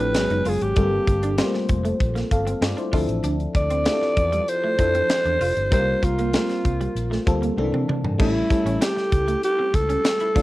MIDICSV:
0, 0, Header, 1, 7, 480
1, 0, Start_track
1, 0, Tempo, 619067
1, 594, Time_signature, 4, 2, 24, 8
1, 8080, End_track
2, 0, Start_track
2, 0, Title_t, "Alto saxophone"
2, 0, Program_c, 0, 65
2, 0, Note_on_c, 0, 71, 97
2, 372, Note_on_c, 0, 68, 85
2, 384, Note_off_c, 0, 71, 0
2, 487, Note_on_c, 0, 67, 87
2, 498, Note_off_c, 0, 68, 0
2, 1200, Note_off_c, 0, 67, 0
2, 2763, Note_on_c, 0, 74, 111
2, 3481, Note_on_c, 0, 72, 103
2, 3493, Note_off_c, 0, 74, 0
2, 4437, Note_off_c, 0, 72, 0
2, 4445, Note_on_c, 0, 72, 96
2, 4683, Note_on_c, 0, 65, 83
2, 4695, Note_off_c, 0, 72, 0
2, 5638, Note_off_c, 0, 65, 0
2, 6363, Note_on_c, 0, 64, 80
2, 6841, Note_on_c, 0, 67, 85
2, 6853, Note_off_c, 0, 64, 0
2, 7317, Note_off_c, 0, 67, 0
2, 7323, Note_on_c, 0, 67, 96
2, 7561, Note_on_c, 0, 69, 93
2, 7573, Note_off_c, 0, 67, 0
2, 8080, Note_off_c, 0, 69, 0
2, 8080, End_track
3, 0, Start_track
3, 0, Title_t, "FM electric piano"
3, 0, Program_c, 1, 5
3, 0, Control_c, 1, 64, 127
3, 0, Note_on_c, 1, 53, 62
3, 0, Note_on_c, 1, 57, 58
3, 0, Note_on_c, 1, 60, 58
3, 0, Note_on_c, 1, 64, 54
3, 0, Note_on_c, 1, 67, 70
3, 0, Note_on_c, 1, 76, 63
3, 113, Note_off_c, 1, 57, 0
3, 114, Note_off_c, 1, 53, 0
3, 115, Note_off_c, 1, 60, 0
3, 115, Note_on_c, 1, 56, 61
3, 116, Note_off_c, 1, 67, 0
3, 116, Note_on_c, 1, 54, 72
3, 117, Note_off_c, 1, 64, 0
3, 119, Note_on_c, 1, 59, 62
3, 122, Control_c, 1, 64, 0
3, 122, Note_on_c, 1, 61, 66
3, 124, Note_off_c, 1, 76, 0
3, 125, Note_on_c, 1, 68, 80
3, 243, Control_c, 1, 64, 127
3, 522, Note_off_c, 1, 54, 0
3, 522, Note_off_c, 1, 56, 0
3, 524, Note_off_c, 1, 59, 0
3, 526, Note_off_c, 1, 61, 0
3, 527, Note_off_c, 1, 68, 0
3, 591, Note_on_c, 1, 55, 64
3, 595, Note_on_c, 1, 57, 53
3, 597, Note_on_c, 1, 60, 62
3, 600, Note_on_c, 1, 69, 79
3, 602, Note_on_c, 1, 65, 61
3, 605, Control_c, 1, 64, 0
3, 645, Note_off_c, 1, 57, 0
3, 646, Note_on_c, 1, 58, 63
3, 755, Control_c, 1, 64, 127
3, 1000, Note_off_c, 1, 55, 0
3, 1003, Note_off_c, 1, 60, 0
3, 1005, Note_off_c, 1, 69, 0
3, 1006, Note_off_c, 1, 65, 0
3, 1028, Note_off_c, 1, 58, 0
3, 1070, Note_on_c, 1, 55, 81
3, 1072, Note_on_c, 1, 57, 59
3, 1074, Note_on_c, 1, 60, 79
3, 1075, Note_on_c, 1, 65, 69
3, 1076, Note_on_c, 1, 72, 86
3, 1120, Note_on_c, 1, 58, 71
3, 1123, Note_off_c, 1, 57, 0
3, 1683, Note_off_c, 1, 55, 0
3, 1685, Note_off_c, 1, 60, 0
3, 1686, Note_off_c, 1, 65, 0
3, 1686, Note_off_c, 1, 72, 0
3, 1709, Note_off_c, 1, 58, 0
3, 1795, Note_on_c, 1, 77, 61
3, 1801, Note_on_c, 1, 69, 56
3, 2023, Note_off_c, 1, 77, 0
3, 2025, Note_off_c, 1, 69, 0
3, 2036, Note_on_c, 1, 74, 64
3, 2039, Note_on_c, 1, 65, 56
3, 2149, Note_off_c, 1, 74, 0
3, 2151, Note_off_c, 1, 65, 0
3, 2156, Note_on_c, 1, 72, 54
3, 2159, Note_on_c, 1, 64, 45
3, 2267, Note_off_c, 1, 64, 0
3, 2269, Note_on_c, 1, 53, 88
3, 2272, Note_on_c, 1, 60, 82
3, 2276, Note_on_c, 1, 64, 77
3, 2277, Note_on_c, 1, 62, 79
3, 2278, Note_on_c, 1, 69, 90
3, 2284, Control_c, 1, 64, 0
3, 2383, Note_off_c, 1, 72, 0
3, 2400, Control_c, 1, 64, 127
3, 2883, Note_off_c, 1, 53, 0
3, 2884, Note_off_c, 1, 60, 0
3, 2886, Note_off_c, 1, 64, 0
3, 2887, Note_off_c, 1, 62, 0
3, 2887, Note_off_c, 1, 69, 0
3, 2988, Note_on_c, 1, 65, 69
3, 2991, Note_on_c, 1, 60, 62
3, 2994, Note_on_c, 1, 62, 58
3, 2999, Note_on_c, 1, 64, 61
3, 3000, Note_on_c, 1, 67, 58
3, 3047, Note_off_c, 1, 67, 0
3, 3050, Note_on_c, 1, 69, 81
3, 3602, Note_off_c, 1, 65, 0
3, 3604, Note_off_c, 1, 60, 0
3, 3606, Note_off_c, 1, 62, 0
3, 3608, Note_off_c, 1, 64, 0
3, 3633, Note_off_c, 1, 69, 0
3, 3709, Note_on_c, 1, 53, 66
3, 3709, Note_on_c, 1, 60, 58
3, 3712, Note_on_c, 1, 62, 58
3, 3715, Note_on_c, 1, 64, 60
3, 3717, Note_on_c, 1, 69, 69
3, 4323, Note_off_c, 1, 53, 0
3, 4323, Note_off_c, 1, 60, 0
3, 4324, Note_off_c, 1, 62, 0
3, 4326, Note_off_c, 1, 64, 0
3, 4327, Note_off_c, 1, 69, 0
3, 4424, Note_on_c, 1, 55, 70
3, 4430, Note_on_c, 1, 58, 58
3, 4430, Note_on_c, 1, 60, 65
3, 4431, Note_on_c, 1, 64, 48
3, 4436, Note_on_c, 1, 70, 77
3, 4442, Control_c, 1, 64, 0
3, 4483, Note_off_c, 1, 64, 0
3, 4485, Note_on_c, 1, 65, 64
3, 4590, Control_c, 1, 64, 127
3, 4837, Note_off_c, 1, 55, 0
3, 4839, Note_off_c, 1, 58, 0
3, 4840, Note_off_c, 1, 60, 0
3, 4842, Note_off_c, 1, 70, 0
3, 4867, Note_off_c, 1, 65, 0
3, 4908, Note_on_c, 1, 55, 66
3, 4909, Note_on_c, 1, 58, 57
3, 4912, Note_on_c, 1, 60, 61
3, 4913, Note_on_c, 1, 65, 60
3, 4917, Note_on_c, 1, 70, 70
3, 5522, Note_off_c, 1, 55, 0
3, 5523, Note_off_c, 1, 58, 0
3, 5524, Note_off_c, 1, 60, 0
3, 5525, Note_off_c, 1, 65, 0
3, 5527, Note_off_c, 1, 70, 0
3, 5630, Note_on_c, 1, 55, 73
3, 5633, Note_on_c, 1, 58, 67
3, 5634, Note_on_c, 1, 60, 68
3, 5638, Note_on_c, 1, 65, 64
3, 5641, Note_on_c, 1, 69, 89
3, 5863, Note_off_c, 1, 58, 0
3, 5867, Note_off_c, 1, 60, 0
3, 5872, Note_off_c, 1, 55, 0
3, 5873, Note_off_c, 1, 69, 0
3, 5873, Note_on_c, 1, 58, 74
3, 5874, Note_on_c, 1, 51, 65
3, 5876, Note_off_c, 1, 65, 0
3, 5876, Note_on_c, 1, 60, 75
3, 5879, Note_on_c, 1, 62, 72
3, 5882, Note_on_c, 1, 69, 90
3, 5884, Control_c, 1, 64, 0
3, 5922, Note_on_c, 1, 52, 84
3, 5924, Note_off_c, 1, 51, 0
3, 6016, Control_c, 1, 64, 127
3, 6281, Note_off_c, 1, 58, 0
3, 6282, Note_off_c, 1, 60, 0
3, 6284, Note_off_c, 1, 62, 0
3, 6285, Note_off_c, 1, 69, 0
3, 6305, Note_off_c, 1, 52, 0
3, 6344, Note_on_c, 1, 55, 70
3, 6344, Note_on_c, 1, 57, 65
3, 6349, Note_on_c, 1, 61, 64
3, 6352, Note_on_c, 1, 64, 64
3, 6354, Note_on_c, 1, 69, 68
3, 6365, Control_c, 1, 64, 0
3, 6475, Control_c, 1, 64, 127
3, 6552, Note_off_c, 1, 55, 0
3, 6552, Note_off_c, 1, 57, 0
3, 6555, Note_off_c, 1, 61, 0
3, 6556, Note_off_c, 1, 64, 0
3, 6558, Note_off_c, 1, 69, 0
3, 6591, Note_on_c, 1, 55, 67
3, 6595, Note_on_c, 1, 57, 55
3, 6596, Note_on_c, 1, 61, 56
3, 6599, Note_on_c, 1, 64, 61
3, 6601, Note_on_c, 1, 69, 71
3, 7408, Note_off_c, 1, 55, 0
3, 7409, Note_off_c, 1, 57, 0
3, 7410, Note_off_c, 1, 61, 0
3, 7412, Note_off_c, 1, 64, 0
3, 7413, Note_off_c, 1, 69, 0
3, 8025, Note_on_c, 1, 53, 70
3, 8027, Note_on_c, 1, 57, 66
3, 8028, Note_on_c, 1, 60, 70
3, 8033, Note_on_c, 1, 62, 69
3, 8035, Note_on_c, 1, 69, 72
3, 8044, Control_c, 1, 64, 0
3, 8080, Note_off_c, 1, 53, 0
3, 8080, Note_off_c, 1, 57, 0
3, 8080, Note_off_c, 1, 60, 0
3, 8080, Note_off_c, 1, 62, 0
3, 8080, Note_off_c, 1, 69, 0
3, 8080, End_track
4, 0, Start_track
4, 0, Title_t, "Clean electric guitar"
4, 0, Program_c, 2, 27
4, 0, Note_on_c, 2, 62, 74
4, 81, Note_off_c, 2, 62, 0
4, 240, Note_on_c, 2, 63, 68
4, 322, Note_off_c, 2, 63, 0
4, 356, Note_on_c, 2, 65, 69
4, 440, Note_off_c, 2, 65, 0
4, 600, Note_on_c, 2, 55, 84
4, 682, Note_off_c, 2, 55, 0
4, 955, Note_on_c, 2, 62, 70
4, 1039, Note_off_c, 2, 62, 0
4, 1073, Note_on_c, 2, 60, 72
4, 1158, Note_off_c, 2, 60, 0
4, 1432, Note_on_c, 2, 57, 75
4, 1517, Note_off_c, 2, 57, 0
4, 1670, Note_on_c, 2, 58, 76
4, 1756, Note_off_c, 2, 58, 0
4, 1912, Note_on_c, 2, 60, 77
4, 1997, Note_off_c, 2, 60, 0
4, 2148, Note_on_c, 2, 62, 69
4, 2235, Note_off_c, 2, 62, 0
4, 2271, Note_on_c, 2, 65, 73
4, 2356, Note_off_c, 2, 65, 0
4, 2511, Note_on_c, 2, 62, 86
4, 2597, Note_off_c, 2, 62, 0
4, 2873, Note_on_c, 2, 60, 78
4, 2958, Note_off_c, 2, 60, 0
4, 2990, Note_on_c, 2, 57, 75
4, 3076, Note_off_c, 2, 57, 0
4, 3352, Note_on_c, 2, 55, 85
4, 3437, Note_off_c, 2, 55, 0
4, 3595, Note_on_c, 2, 57, 79
4, 3679, Note_off_c, 2, 57, 0
4, 3837, Note_on_c, 2, 60, 76
4, 3920, Note_off_c, 2, 60, 0
4, 4073, Note_on_c, 2, 62, 68
4, 4158, Note_off_c, 2, 62, 0
4, 4196, Note_on_c, 2, 65, 76
4, 4280, Note_off_c, 2, 65, 0
4, 4438, Note_on_c, 2, 60, 88
4, 4521, Note_off_c, 2, 60, 0
4, 4801, Note_on_c, 2, 58, 68
4, 4883, Note_off_c, 2, 58, 0
4, 4918, Note_on_c, 2, 57, 77
4, 5001, Note_off_c, 2, 57, 0
4, 5278, Note_on_c, 2, 55, 79
4, 5361, Note_off_c, 2, 55, 0
4, 5513, Note_on_c, 2, 57, 78
4, 5598, Note_off_c, 2, 57, 0
4, 5753, Note_on_c, 2, 58, 80
4, 5837, Note_off_c, 2, 58, 0
4, 6000, Note_on_c, 2, 60, 67
4, 6082, Note_off_c, 2, 60, 0
4, 6118, Note_on_c, 2, 62, 74
4, 6201, Note_off_c, 2, 62, 0
4, 6354, Note_on_c, 2, 57, 83
4, 6439, Note_off_c, 2, 57, 0
4, 6714, Note_on_c, 2, 61, 75
4, 6798, Note_off_c, 2, 61, 0
4, 6833, Note_on_c, 2, 60, 72
4, 6918, Note_off_c, 2, 60, 0
4, 7194, Note_on_c, 2, 57, 77
4, 7278, Note_off_c, 2, 57, 0
4, 7435, Note_on_c, 2, 60, 79
4, 7519, Note_off_c, 2, 60, 0
4, 7670, Note_on_c, 2, 61, 77
4, 7756, Note_off_c, 2, 61, 0
4, 7915, Note_on_c, 2, 64, 63
4, 7999, Note_off_c, 2, 64, 0
4, 8029, Note_on_c, 2, 65, 75
4, 8080, Note_off_c, 2, 65, 0
4, 8080, End_track
5, 0, Start_track
5, 0, Title_t, "Fingered electric bass"
5, 0, Program_c, 3, 33
5, 0, Note_on_c, 3, 33, 85
5, 121, Note_off_c, 3, 33, 0
5, 121, Note_on_c, 3, 32, 91
5, 201, Note_off_c, 3, 32, 0
5, 235, Note_on_c, 3, 30, 74
5, 317, Note_off_c, 3, 30, 0
5, 355, Note_on_c, 3, 30, 80
5, 437, Note_off_c, 3, 30, 0
5, 476, Note_on_c, 3, 32, 75
5, 557, Note_off_c, 3, 32, 0
5, 595, Note_on_c, 3, 31, 105
5, 759, Note_off_c, 3, 31, 0
5, 834, Note_on_c, 3, 31, 94
5, 1080, Note_off_c, 3, 31, 0
5, 1314, Note_on_c, 3, 29, 75
5, 1478, Note_off_c, 3, 29, 0
5, 1553, Note_on_c, 3, 34, 88
5, 1718, Note_off_c, 3, 34, 0
5, 1793, Note_on_c, 3, 31, 90
5, 1958, Note_off_c, 3, 31, 0
5, 2026, Note_on_c, 3, 43, 89
5, 2111, Note_off_c, 3, 43, 0
5, 2271, Note_on_c, 3, 38, 90
5, 2354, Note_off_c, 3, 38, 0
5, 2386, Note_on_c, 3, 33, 79
5, 2471, Note_off_c, 3, 33, 0
5, 2509, Note_on_c, 3, 38, 102
5, 2675, Note_off_c, 3, 38, 0
5, 2750, Note_on_c, 3, 38, 87
5, 2998, Note_off_c, 3, 38, 0
5, 3233, Note_on_c, 3, 40, 85
5, 3398, Note_off_c, 3, 40, 0
5, 3711, Note_on_c, 3, 41, 84
5, 3876, Note_off_c, 3, 41, 0
5, 4072, Note_on_c, 3, 40, 79
5, 4155, Note_off_c, 3, 40, 0
5, 4191, Note_on_c, 3, 29, 79
5, 4274, Note_off_c, 3, 29, 0
5, 4315, Note_on_c, 3, 31, 90
5, 4434, Note_on_c, 3, 36, 104
5, 4445, Note_off_c, 3, 31, 0
5, 4598, Note_off_c, 3, 36, 0
5, 4671, Note_on_c, 3, 36, 92
5, 4918, Note_off_c, 3, 36, 0
5, 5156, Note_on_c, 3, 36, 77
5, 5319, Note_off_c, 3, 36, 0
5, 5390, Note_on_c, 3, 34, 82
5, 5555, Note_off_c, 3, 34, 0
5, 5638, Note_on_c, 3, 38, 81
5, 5801, Note_off_c, 3, 38, 0
5, 5870, Note_on_c, 3, 36, 88
5, 5953, Note_off_c, 3, 36, 0
5, 5989, Note_on_c, 3, 48, 73
5, 6073, Note_off_c, 3, 48, 0
5, 6230, Note_on_c, 3, 43, 69
5, 6314, Note_off_c, 3, 43, 0
5, 6355, Note_on_c, 3, 33, 99
5, 6518, Note_off_c, 3, 33, 0
5, 6708, Note_on_c, 3, 33, 91
5, 6792, Note_off_c, 3, 33, 0
5, 7075, Note_on_c, 3, 37, 82
5, 7239, Note_off_c, 3, 37, 0
5, 7551, Note_on_c, 3, 37, 80
5, 7716, Note_off_c, 3, 37, 0
5, 8031, Note_on_c, 3, 38, 89
5, 8080, Note_off_c, 3, 38, 0
5, 8080, End_track
6, 0, Start_track
6, 0, Title_t, "Muted clean electric guitar strokes"
6, 121, Note_on_c, 9, 29, 43
6, 198, Note_off_c, 9, 29, 0
6, 837, Note_on_c, 9, 29, 41
6, 915, Note_off_c, 9, 29, 0
6, 1198, Note_on_c, 9, 29, 42
6, 1275, Note_off_c, 9, 29, 0
6, 1793, Note_on_c, 9, 29, 40
6, 1870, Note_off_c, 9, 29, 0
6, 2031, Note_on_c, 9, 29, 41
6, 2109, Note_off_c, 9, 29, 0
6, 2751, Note_on_c, 9, 29, 41
6, 2828, Note_off_c, 9, 29, 0
6, 3113, Note_on_c, 9, 29, 44
6, 3191, Note_off_c, 9, 29, 0
6, 3721, Note_on_c, 9, 29, 41
6, 3798, Note_off_c, 9, 29, 0
6, 3956, Note_on_c, 9, 29, 41
6, 4033, Note_off_c, 9, 29, 0
6, 4678, Note_on_c, 9, 29, 41
6, 4755, Note_off_c, 9, 29, 0
6, 5040, Note_on_c, 9, 29, 42
6, 5118, Note_off_c, 9, 29, 0
6, 5637, Note_on_c, 9, 29, 39
6, 5714, Note_off_c, 9, 29, 0
6, 5878, Note_on_c, 9, 29, 39
6, 5956, Note_off_c, 9, 29, 0
6, 6595, Note_on_c, 9, 29, 43
6, 6672, Note_off_c, 9, 29, 0
6, 6952, Note_on_c, 9, 29, 45
6, 7029, Note_off_c, 9, 29, 0
6, 7550, Note_on_c, 9, 29, 40
6, 7627, Note_off_c, 9, 29, 0
6, 7793, Note_on_c, 9, 29, 41
6, 7870, Note_off_c, 9, 29, 0
6, 8080, End_track
7, 0, Start_track
7, 0, Title_t, "Drums"
7, 111, Note_on_c, 9, 42, 94
7, 114, Note_on_c, 9, 38, 102
7, 189, Note_off_c, 9, 42, 0
7, 192, Note_off_c, 9, 38, 0
7, 232, Note_on_c, 9, 42, 34
7, 309, Note_off_c, 9, 42, 0
7, 351, Note_on_c, 9, 46, 66
7, 428, Note_off_c, 9, 46, 0
7, 475, Note_on_c, 9, 42, 53
7, 553, Note_off_c, 9, 42, 0
7, 588, Note_on_c, 9, 42, 89
7, 593, Note_on_c, 9, 36, 107
7, 666, Note_off_c, 9, 42, 0
7, 671, Note_off_c, 9, 36, 0
7, 833, Note_on_c, 9, 36, 92
7, 835, Note_on_c, 9, 42, 65
7, 910, Note_off_c, 9, 36, 0
7, 913, Note_off_c, 9, 42, 0
7, 952, Note_on_c, 9, 42, 49
7, 1029, Note_off_c, 9, 42, 0
7, 1069, Note_on_c, 9, 42, 96
7, 1073, Note_on_c, 9, 38, 113
7, 1146, Note_off_c, 9, 42, 0
7, 1151, Note_off_c, 9, 38, 0
7, 1194, Note_on_c, 9, 38, 33
7, 1272, Note_off_c, 9, 38, 0
7, 1309, Note_on_c, 9, 42, 66
7, 1313, Note_on_c, 9, 36, 94
7, 1386, Note_off_c, 9, 42, 0
7, 1391, Note_off_c, 9, 36, 0
7, 1435, Note_on_c, 9, 42, 48
7, 1512, Note_off_c, 9, 42, 0
7, 1553, Note_on_c, 9, 36, 88
7, 1554, Note_on_c, 9, 42, 73
7, 1631, Note_off_c, 9, 36, 0
7, 1631, Note_off_c, 9, 42, 0
7, 1673, Note_on_c, 9, 42, 33
7, 1677, Note_on_c, 9, 38, 27
7, 1751, Note_off_c, 9, 42, 0
7, 1755, Note_off_c, 9, 38, 0
7, 1793, Note_on_c, 9, 36, 93
7, 1793, Note_on_c, 9, 42, 78
7, 1871, Note_off_c, 9, 36, 0
7, 1871, Note_off_c, 9, 42, 0
7, 1917, Note_on_c, 9, 42, 47
7, 1994, Note_off_c, 9, 42, 0
7, 2032, Note_on_c, 9, 42, 92
7, 2034, Note_on_c, 9, 38, 105
7, 2109, Note_off_c, 9, 42, 0
7, 2112, Note_off_c, 9, 38, 0
7, 2154, Note_on_c, 9, 42, 32
7, 2231, Note_off_c, 9, 42, 0
7, 2272, Note_on_c, 9, 36, 93
7, 2272, Note_on_c, 9, 46, 64
7, 2349, Note_off_c, 9, 36, 0
7, 2349, Note_off_c, 9, 46, 0
7, 2394, Note_on_c, 9, 42, 50
7, 2471, Note_off_c, 9, 42, 0
7, 2509, Note_on_c, 9, 42, 87
7, 2586, Note_off_c, 9, 42, 0
7, 2635, Note_on_c, 9, 42, 29
7, 2712, Note_off_c, 9, 42, 0
7, 2750, Note_on_c, 9, 36, 96
7, 2754, Note_on_c, 9, 42, 73
7, 2828, Note_off_c, 9, 36, 0
7, 2832, Note_off_c, 9, 42, 0
7, 2871, Note_on_c, 9, 42, 47
7, 2949, Note_off_c, 9, 42, 0
7, 2988, Note_on_c, 9, 42, 95
7, 2993, Note_on_c, 9, 38, 114
7, 3066, Note_off_c, 9, 42, 0
7, 3070, Note_off_c, 9, 38, 0
7, 3112, Note_on_c, 9, 38, 32
7, 3190, Note_off_c, 9, 38, 0
7, 3230, Note_on_c, 9, 42, 64
7, 3232, Note_on_c, 9, 36, 92
7, 3308, Note_off_c, 9, 42, 0
7, 3310, Note_off_c, 9, 36, 0
7, 3353, Note_on_c, 9, 42, 46
7, 3431, Note_off_c, 9, 42, 0
7, 3473, Note_on_c, 9, 42, 73
7, 3551, Note_off_c, 9, 42, 0
7, 3711, Note_on_c, 9, 36, 94
7, 3712, Note_on_c, 9, 42, 69
7, 3789, Note_off_c, 9, 36, 0
7, 3789, Note_off_c, 9, 42, 0
7, 3834, Note_on_c, 9, 42, 48
7, 3912, Note_off_c, 9, 42, 0
7, 3950, Note_on_c, 9, 42, 95
7, 3953, Note_on_c, 9, 38, 107
7, 4028, Note_off_c, 9, 42, 0
7, 4030, Note_off_c, 9, 38, 0
7, 4073, Note_on_c, 9, 42, 34
7, 4151, Note_off_c, 9, 42, 0
7, 4193, Note_on_c, 9, 46, 69
7, 4271, Note_off_c, 9, 46, 0
7, 4317, Note_on_c, 9, 42, 47
7, 4394, Note_off_c, 9, 42, 0
7, 4434, Note_on_c, 9, 36, 107
7, 4434, Note_on_c, 9, 42, 90
7, 4511, Note_off_c, 9, 36, 0
7, 4511, Note_off_c, 9, 42, 0
7, 4673, Note_on_c, 9, 36, 91
7, 4679, Note_on_c, 9, 42, 71
7, 4751, Note_off_c, 9, 36, 0
7, 4756, Note_off_c, 9, 42, 0
7, 4796, Note_on_c, 9, 42, 46
7, 4874, Note_off_c, 9, 42, 0
7, 4912, Note_on_c, 9, 42, 97
7, 4917, Note_on_c, 9, 38, 117
7, 4990, Note_off_c, 9, 42, 0
7, 4994, Note_off_c, 9, 38, 0
7, 5035, Note_on_c, 9, 42, 31
7, 5039, Note_on_c, 9, 38, 33
7, 5113, Note_off_c, 9, 42, 0
7, 5116, Note_off_c, 9, 38, 0
7, 5157, Note_on_c, 9, 36, 83
7, 5157, Note_on_c, 9, 42, 65
7, 5234, Note_off_c, 9, 36, 0
7, 5235, Note_off_c, 9, 42, 0
7, 5280, Note_on_c, 9, 42, 45
7, 5357, Note_off_c, 9, 42, 0
7, 5400, Note_on_c, 9, 42, 68
7, 5478, Note_off_c, 9, 42, 0
7, 5521, Note_on_c, 9, 38, 31
7, 5598, Note_off_c, 9, 38, 0
7, 5636, Note_on_c, 9, 36, 100
7, 5638, Note_on_c, 9, 42, 72
7, 5714, Note_off_c, 9, 36, 0
7, 5715, Note_off_c, 9, 42, 0
7, 5761, Note_on_c, 9, 42, 48
7, 5838, Note_off_c, 9, 42, 0
7, 5879, Note_on_c, 9, 48, 55
7, 5957, Note_off_c, 9, 48, 0
7, 6001, Note_on_c, 9, 47, 57
7, 6078, Note_off_c, 9, 47, 0
7, 6120, Note_on_c, 9, 45, 84
7, 6197, Note_off_c, 9, 45, 0
7, 6238, Note_on_c, 9, 43, 72
7, 6315, Note_off_c, 9, 43, 0
7, 6355, Note_on_c, 9, 36, 109
7, 6358, Note_on_c, 9, 49, 85
7, 6433, Note_off_c, 9, 36, 0
7, 6435, Note_off_c, 9, 49, 0
7, 6594, Note_on_c, 9, 36, 97
7, 6600, Note_on_c, 9, 42, 73
7, 6672, Note_off_c, 9, 36, 0
7, 6677, Note_off_c, 9, 42, 0
7, 6719, Note_on_c, 9, 42, 50
7, 6796, Note_off_c, 9, 42, 0
7, 6836, Note_on_c, 9, 42, 97
7, 6840, Note_on_c, 9, 38, 118
7, 6842, Note_on_c, 9, 39, 87
7, 6913, Note_off_c, 9, 42, 0
7, 6918, Note_off_c, 9, 38, 0
7, 6919, Note_off_c, 9, 39, 0
7, 6958, Note_on_c, 9, 38, 33
7, 7036, Note_off_c, 9, 38, 0
7, 7073, Note_on_c, 9, 42, 63
7, 7074, Note_on_c, 9, 36, 94
7, 7151, Note_off_c, 9, 42, 0
7, 7152, Note_off_c, 9, 36, 0
7, 7197, Note_on_c, 9, 42, 48
7, 7275, Note_off_c, 9, 42, 0
7, 7315, Note_on_c, 9, 42, 76
7, 7392, Note_off_c, 9, 42, 0
7, 7552, Note_on_c, 9, 36, 94
7, 7553, Note_on_c, 9, 42, 76
7, 7629, Note_off_c, 9, 36, 0
7, 7630, Note_off_c, 9, 42, 0
7, 7674, Note_on_c, 9, 42, 48
7, 7751, Note_off_c, 9, 42, 0
7, 7790, Note_on_c, 9, 42, 96
7, 7792, Note_on_c, 9, 38, 108
7, 7798, Note_on_c, 9, 39, 87
7, 7867, Note_off_c, 9, 42, 0
7, 7870, Note_off_c, 9, 38, 0
7, 7876, Note_off_c, 9, 39, 0
7, 7909, Note_on_c, 9, 42, 34
7, 7986, Note_off_c, 9, 42, 0
7, 8031, Note_on_c, 9, 36, 99
7, 8032, Note_on_c, 9, 46, 68
7, 8080, Note_off_c, 9, 36, 0
7, 8080, Note_off_c, 9, 46, 0
7, 8080, End_track
0, 0, End_of_file